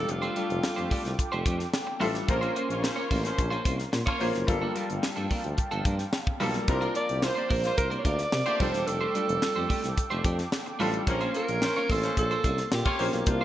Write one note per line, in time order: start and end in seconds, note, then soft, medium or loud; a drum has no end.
0.00 0.25 G3 medium
0.00 0.26 D4 medium
0.00 0.26 F4 medium
0.00 0.12 A4 medium
0.00 0.26 A4 medium
0.00 2.26 A4 medium
0.00 2.26 G5 medium
0.00 2.24 D6 medium
0.08 0.27 F1 medium
0.08 1.75 F4 medium
0.08 muted clean electric guitar stroke soft
0.08 closed hi-hat medium
0.22 0.34 A3 medium
0.22 0.35 D4 medium
0.22 0.35 G4 medium
0.22 0.37 C5 medium
0.22 closed hi-hat soft
0.35 1.25 G3 medium
0.35 0.50 A3 medium
0.35 0.49 D4 medium
0.35 1.26 D4 medium
0.35 1.26 F4 medium
0.35 0.49 G4 medium
0.35 1.26 A4 medium
0.35 0.49 D5 medium
0.35 closed hi-hat medium
0.49 0.59 F1 loud
0.49 muted clean electric guitar stroke soft
0.49 closed hi-hat medium
0.63 0.69 F2 soft
0.63 muted clean electric guitar stroke soft
0.63 snare loud
0.76 0.87 F2 medium
0.76 0.89 A3 soft
0.76 0.90 D4 soft
0.76 0.91 G4 medium
0.76 0.91 C5 medium
0.76 closed hi-hat soft
0.91 1.09 A3 medium
0.91 1.04 D4 medium
0.91 1.04 G4 medium
0.91 1.04 D5 medium
0.91 kick medium
0.91 open hi-hat medium
1.04 1.14 C2 medium
1.04 muted clean electric guitar stroke soft
1.04 snare soft
1.04 closed hi-hat medium
1.18 muted clean electric guitar stroke soft
1.18 kick loud
1.18 closed hi-hat medium
1.32 1.42 F1 medium
1.32 1.44 A3 medium
1.32 1.45 D4 medium
1.32 1.45 G4 medium
1.32 1.47 C5 medium
1.32 closed hi-hat soft
1.45 1.65 F2 medium
1.45 1.60 A3 medium
1.45 1.59 D4 medium
1.45 1.59 G4 medium
1.45 1.59 D5 medium
1.45 kick loud
1.45 closed hi-hat medium
1.59 muted clean electric guitar stroke soft
1.59 snare soft
1.59 closed hi-hat soft
1.73 1.99 G5 medium
1.73 snare loud
1.87 muted clean electric guitar stroke soft
2.00 2.20 A1 medium
2.00 2.23 G3 loud
2.00 2.19 A3 medium
2.00 2.23 D4 medium
2.00 2.14 D4 medium
2.00 2.23 F4 medium
2.00 2.14 G4 medium
2.00 2.23 A4 loud
2.00 2.13 C5 medium
2.00 2.26 E5 medium
2.00 open hi-hat medium
2.14 muted clean electric guitar stroke medium
2.14 snare soft
2.14 closed hi-hat soft
2.27 2.47 A#1 loud
2.27 2.51 F3 medium
2.27 2.50 A#3 medium
2.27 2.51 C#4 medium
2.27 4.46 C#4 medium
2.27 2.51 C#4 medium
2.27 2.51 F4 medium
2.27 4.46 A#4 medium
2.27 2.51 A#4 loud
2.27 2.51 C5 loud
2.27 4.46 C6 medium
2.27 muted clean electric guitar stroke soft
2.27 kick loud
2.27 closed hi-hat medium
2.41 2.54 A#3 medium
2.41 2.54 C#4 medium
2.41 2.55 F4 medium
2.41 2.56 C5 medium
2.41 closed hi-hat soft
2.55 3.45 A#3 medium
2.55 2.70 A#3 medium
2.55 3.45 C#4 medium
2.55 2.69 C#4 medium
2.55 3.45 F4 medium
2.55 2.68 F4 medium
2.55 3.45 C5 medium
2.55 2.68 C5 medium
2.55 closed hi-hat medium
2.69 2.88 A#1 medium
2.69 2.81 A#3 medium
2.69 2.81 F4 medium
2.69 2.81 C#5 medium
2.69 muted clean electric guitar stroke medium
2.69 closed hi-hat medium
2.82 2.94 F3 medium
2.82 2.94 C#4 medium
2.82 2.94 C5 medium
2.82 muted clean electric guitar stroke soft
2.82 snare medium
2.96 3.08 A#3 medium
2.96 3.09 A#3 medium
2.96 3.10 C#4 medium
2.96 3.10 F4 medium
2.96 3.08 F4 medium
2.96 3.11 C#5 medium
2.96 3.08 C#5 medium
3.10 3.30 A1 loud
3.10 3.29 A#3 medium
3.10 3.24 C#4 medium
3.10 3.24 F4 medium
3.10 3.23 C5 medium
3.10 kick medium
3.10 open hi-hat medium
3.24 3.63 F3 medium
3.24 3.63 C#4 medium
3.24 3.63 C5 medium
3.24 muted clean electric guitar stroke medium
3.24 snare soft
3.24 closed hi-hat medium
3.37 3.57 A#1 loud
3.37 muted clean electric guitar stroke soft
3.37 kick medium
3.37 closed hi-hat medium
3.50 3.63 A#3 medium
3.50 3.64 C#4 medium
3.50 3.65 F4 medium
3.50 3.65 C5 medium
3.50 closed hi-hat soft
3.64 3.84 C2 medium
3.64 3.80 A#3 medium
3.64 3.79 C#4 medium
3.64 3.78 F4 medium
3.64 3.78 C5 medium
3.64 kick loud
3.64 closed hi-hat medium
3.79 muted clean electric guitar stroke soft
3.79 snare soft
3.79 closed hi-hat soft
3.92 4.03 A#2 medium
3.92 muted clean electric guitar stroke soft
3.92 snare loud
4.06 4.29 A#3 loud
4.06 4.19 A#3 medium
4.06 4.20 C#4 medium
4.06 4.20 F4 medium
4.06 4.29 F4 medium
4.06 4.21 C#5 medium
4.06 4.29 C#5 loud
4.06 kick loud
4.06 closed hi-hat soft
4.20 4.31 A#1 medium
4.20 4.43 A#3 loud
4.20 4.35 A#3 medium
4.20 4.43 C#4 medium
4.20 4.34 C#4 medium
4.20 4.43 F4 medium
4.20 4.34 F4 medium
4.20 4.43 C5 loud
4.20 4.33 C5 medium
4.20 open hi-hat medium
4.34 4.44 F#1 medium
4.34 muted clean electric guitar stroke soft
4.34 snare soft
4.34 closed hi-hat soft
4.47 4.67 G1 medium
4.47 4.70 G3 loud
4.47 4.70 A#3 medium
4.47 4.70 F4 medium
4.47 4.70 A4 loud
4.47 6.66 F5 medium
4.47 6.66 G5 medium
4.47 6.66 A5 medium
4.47 muted clean electric guitar stroke soft
4.47 kick loud
4.47 closed hi-hat medium
4.62 4.74 F3 medium
4.62 4.75 A#3 medium
4.62 4.75 D4 medium
4.62 4.77 A4 medium
4.75 4.90 F3 medium
4.75 5.65 G3 medium
4.75 5.65 A#3 medium
4.75 4.89 A#3 medium
4.75 4.89 D4 medium
4.75 5.65 F4 medium
4.75 5.65 A4 medium
4.75 4.88 A#4 medium
4.75 closed hi-hat medium
4.89 4.99 G1 medium
4.89 muted clean electric guitar stroke medium
4.89 closed hi-hat medium
5.03 5.09 G2 soft
5.03 muted clean electric guitar stroke soft
5.03 snare loud
5.16 5.26 G2 medium
5.16 5.29 F3 medium
5.16 5.29 A#3 medium
5.16 5.30 D4 medium
5.16 5.31 A4 medium
5.16 closed hi-hat soft
5.30 5.49 F3 medium
5.30 5.44 A#3 medium
5.30 5.44 D4 medium
5.30 5.44 A#4 medium
5.30 kick medium
5.30 open hi-hat medium
5.44 5.54 D2 medium
5.44 muted clean electric guitar stroke soft
5.44 closed hi-hat medium
5.57 muted clean electric guitar stroke medium
5.57 kick loud
5.57 closed hi-hat medium
5.71 5.81 G1 medium
5.71 5.84 F3 medium
5.71 5.84 A#3 medium
5.71 5.85 D4 medium
5.71 5.86 A4 loud
5.71 closed hi-hat soft
5.85 6.04 G2 medium
5.85 6.00 F3 medium
5.85 5.99 A#3 medium
5.85 5.99 D4 medium
5.85 5.99 A#4 medium
5.85 kick loud
5.85 closed hi-hat medium
5.99 muted clean electric guitar stroke medium
5.99 snare soft
5.99 closed hi-hat medium
6.13 snare loud
6.27 muted clean electric guitar stroke soft
6.27 kick loud
6.40 6.59 B1 medium
6.40 6.59 F3 medium
6.40 6.63 G3 medium
6.40 6.63 A#3 medium
6.40 6.55 A#3 medium
6.40 6.54 D4 medium
6.40 6.63 F4 medium
6.40 6.63 A4 loud
6.40 6.54 A4 medium
6.40 open hi-hat medium
6.54 muted clean electric guitar stroke soft
6.54 snare soft
6.54 closed hi-hat medium
6.68 6.87 C2 loud
6.68 6.90 F3 medium
6.68 6.90 G3 loud
6.68 6.90 C4 medium
6.68 6.91 D4 medium
6.68 6.90 F4 medium
6.68 8.58 A#4 medium
6.68 6.90 A#4 loud
6.68 6.91 A#4 loud
6.68 8.58 F5 medium
6.68 11.03 D6 medium
6.68 muted clean electric guitar stroke soft
6.68 kick loud
6.68 closed hi-hat medium
6.81 6.93 A#3 medium
6.81 6.94 D4 medium
6.81 6.94 F4 medium
6.81 6.95 A#4 medium
6.81 closed hi-hat soft
6.94 7.84 F3 medium
6.94 7.09 A#3 medium
6.94 7.84 C4 medium
6.94 7.08 D4 medium
6.94 7.85 D4 medium
6.94 7.08 F4 medium
6.94 7.07 A#4 medium
6.94 7.85 A#4 medium
6.94 7.25 D5 medium
6.94 closed hi-hat medium
7.08 7.28 C2 medium
7.08 7.20 A#3 medium
7.08 7.20 G4 medium
7.08 7.20 D5 medium
7.08 muted clean electric guitar stroke soft
7.08 closed hi-hat medium
7.22 7.34 G3 medium
7.22 7.34 F4 medium
7.22 7.34 C5 loud
7.22 7.50 C5 medium
7.22 muted clean electric guitar stroke soft
7.22 snare loud
7.35 7.48 A#3 medium
7.35 7.49 D4 medium
7.35 7.49 F4 medium
7.35 7.48 G4 medium
7.35 7.51 C5 medium
7.35 7.48 D5 medium
7.35 closed hi-hat soft
7.49 7.69 A#1 loud
7.49 7.68 A#3 medium
7.49 7.64 D4 medium
7.49 7.63 F4 loud
7.49 7.62 A#4 medium
7.49 7.76 C5 loud
7.49 kick medium
7.49 open hi-hat medium
7.64 8.03 G3 medium
7.64 8.03 F4 medium
7.64 8.03 C5 loud
7.64 muted clean electric guitar stroke medium
7.64 snare soft
7.64 closed hi-hat medium
7.78 7.97 C2 medium
7.78 7.87 A#4 loud
7.78 muted clean electric guitar stroke medium
7.78 kick medium
7.78 closed hi-hat medium
7.90 8.03 A#3 medium
7.90 8.04 D4 medium
7.90 8.04 F4 medium
7.90 8.05 A#4 medium
7.90 closed hi-hat soft
7.99 8.06 C#5 medium
8.04 8.24 D2 loud
8.04 8.19 A#3 medium
8.04 8.19 D4 medium
8.04 8.18 F4 medium
8.04 8.17 A#4 medium
8.04 8.62 D5 loud
8.04 kick medium
8.04 closed hi-hat medium
8.18 muted clean electric guitar stroke medium
8.18 snare soft
8.18 closed hi-hat medium
8.32 8.42 C3 loud
8.32 muted clean electric guitar stroke soft
8.32 snare loud
8.46 8.68 A3 medium
8.46 8.59 A#3 medium
8.46 8.59 D4 medium
8.46 8.61 F4 medium
8.46 8.68 G4 loud
8.46 8.60 C5 medium
8.46 8.68 D5 loud
8.46 closed hi-hat soft
8.60 8.70 F1 loud
8.60 9.05 G3 medium
8.60 8.74 A3 medium
8.60 9.05 D4 medium
8.60 8.74 D4 medium
8.60 9.05 F4 medium
8.60 8.73 G4 medium
8.60 9.05 A4 medium
8.60 11.05 A4 medium
8.60 8.89 C5 medium
8.60 8.72 C5 medium
8.60 11.05 G5 medium
8.60 kick loud
8.60 crash medium
8.74 8.83 E1 medium
8.74 muted clean electric guitar stroke soft
8.74 snare soft
8.74 closed hi-hat soft
8.87 9.06 F1 medium
8.87 10.52 A4 loud
8.87 muted clean electric guitar stroke medium
8.87 closed hi-hat medium
9.01 9.13 A3 medium
9.01 9.14 D4 medium
9.01 9.14 G4 medium
9.01 9.16 C5 medium
9.14 10.04 G3 medium
9.14 9.29 A3 medium
9.14 10.04 D4 medium
9.14 9.28 D4 medium
9.14 10.04 F4 medium
9.14 9.28 G4 medium
9.14 10.05 A4 medium
9.14 9.28 D5 medium
9.14 closed hi-hat medium
9.28 9.38 F1 loud
9.28 muted clean electric guitar stroke medium
9.28 closed hi-hat medium
9.42 9.48 F2 soft
9.42 muted clean electric guitar stroke soft
9.42 snare loud
9.55 9.66 F2 medium
9.55 9.68 A3 medium
9.55 9.68 D4 medium
9.55 9.69 G4 medium
9.55 9.70 C5 medium
9.69 9.88 A3 medium
9.69 9.83 D4 medium
9.69 9.83 G4 medium
9.69 9.83 D5 medium
9.69 kick medium
9.69 open hi-hat medium
9.83 9.93 C2 medium
9.83 muted clean electric guitar stroke medium
9.83 snare soft
9.83 closed hi-hat medium
9.97 muted clean electric guitar stroke medium
9.97 kick medium
9.97 closed hi-hat medium
10.10 10.20 F1 medium
10.10 10.23 A3 medium
10.10 10.24 D4 medium
10.10 10.24 G4 medium
10.10 10.26 C5 medium
10.10 closed hi-hat soft
10.24 10.43 F2 loud
10.24 10.39 A3 medium
10.24 10.38 D4 medium
10.24 10.38 G4 medium
10.24 10.38 D5 medium
10.24 kick loud
10.24 closed hi-hat medium
10.38 muted clean electric guitar stroke soft
10.38 snare soft
10.38 closed hi-hat soft
10.52 snare loud
10.66 muted clean electric guitar stroke soft
10.66 closed hi-hat soft
10.79 10.99 A1 medium
10.79 11.02 G3 loud
10.79 10.98 A3 medium
10.79 10.94 D4 medium
10.79 11.02 D4 medium
10.79 11.02 F4 medium
10.79 10.93 G4 medium
10.79 11.03 A4 loud
10.79 10.92 C5 medium
10.79 open hi-hat medium
10.94 muted clean electric guitar stroke soft
10.94 closed hi-hat medium
11.07 11.26 A#1 loud
11.07 11.29 F3 medium
11.07 11.29 A#3 medium
11.07 13.45 A#3 medium
11.07 13.24 C#4 medium
11.07 11.30 C#4 medium
11.07 11.29 C#4 loud
11.07 11.30 F4 medium
11.07 11.29 A#4 loud
11.07 11.30 C5 loud
11.07 13.24 C6 loud
11.07 muted clean electric guitar stroke soft
11.07 kick loud
11.07 closed hi-hat medium
11.21 11.34 A#3 medium
11.21 11.34 C#4 medium
11.21 11.35 F4 medium
11.21 11.35 C5 medium
11.21 closed hi-hat soft
11.35 11.49 A#3 medium
11.35 12.24 A#3 medium
11.35 12.24 C#4 medium
11.35 11.49 C#4 medium
11.35 12.24 F4 medium
11.35 11.48 F4 medium
11.35 11.93 A#4 loud
11.35 12.25 C5 medium
11.35 11.48 C5 medium
11.35 closed hi-hat medium
11.47 11.67 A#1 loud
11.47 11.59 A#3 medium
11.47 11.59 F4 medium
11.47 11.59 C#5 medium
11.47 muted clean electric guitar stroke medium
11.47 closed hi-hat medium
11.62 11.73 F3 medium
11.62 11.73 C#4 medium
11.62 11.73 C5 loud
11.62 muted clean electric guitar stroke soft
11.62 snare loud
11.75 11.86 A#3 medium
11.75 11.89 A#3 medium
11.75 11.89 C#4 medium
11.75 11.86 F4 medium
11.75 11.90 F4 medium
11.75 11.86 C#5 medium
11.75 11.91 C#5 medium
11.75 closed hi-hat soft
11.90 12.08 A1 medium
11.90 12.08 A#3 medium
11.90 12.04 C#4 medium
11.90 12.03 F4 medium
11.90 12.18 A4 loud
11.90 12.03 C5 loud
11.90 kick medium
11.90 open hi-hat medium
12.02 12.41 F3 loud
12.02 12.41 C#4 medium
12.02 12.41 C5 loud
12.02 muted clean electric guitar stroke medium
12.02 snare soft
12.02 closed hi-hat medium
12.17 12.36 A#1 loud
12.17 12.69 A4 loud
12.17 muted clean electric guitar stroke soft
12.17 kick medium
12.17 closed hi-hat medium
12.31 12.43 A#3 medium
12.31 12.44 C#4 medium
12.31 12.45 F4 medium
12.31 12.45 C5 medium
12.31 closed hi-hat soft
12.44 12.63 C2 loud
12.44 12.59 A#3 medium
12.44 12.59 C#4 medium
12.44 12.59 F4 medium
12.44 12.58 C5 medium
12.44 kick medium
12.44 closed hi-hat medium
12.58 muted clean electric guitar stroke soft
12.58 snare soft
12.58 closed hi-hat medium
12.72 12.82 A#2 loud
12.72 13.31 G4 loud
12.72 muted clean electric guitar stroke medium
12.72 snare loud
12.85 13.07 A#3 loud
12.85 12.99 A#3 medium
12.85 13.00 C#4 medium
12.85 13.07 F4 loud
12.85 13.00 F4 medium
12.85 13.08 C#5 loud
12.85 13.02 C#5 medium
12.85 kick loud
12.85 closed hi-hat soft
12.99 13.09 A#1 loud
12.99 13.21 A#3 medium
12.99 13.14 A#3 medium
12.99 13.21 C#4 medium
12.99 13.13 C#4 medium
12.99 13.22 F4 medium
12.99 13.13 F4 medium
12.99 13.22 C5 medium
12.99 13.12 C5 medium
12.99 open hi-hat medium
13.13 13.23 B1 medium
13.13 muted clean electric guitar stroke soft
13.13 snare soft
13.13 closed hi-hat medium
13.26 13.45 C2 loud
13.26 13.45 A#3 medium
13.26 13.45 D4 medium
13.26 13.45 F4 medium
13.26 13.45 F4 loud
13.26 13.45 C5 medium
13.26 13.45 F5 medium
13.26 13.45 D6 medium
13.26 muted clean electric guitar stroke soft
13.26 kick loud
13.26 closed hi-hat medium
13.41 13.45 C5 medium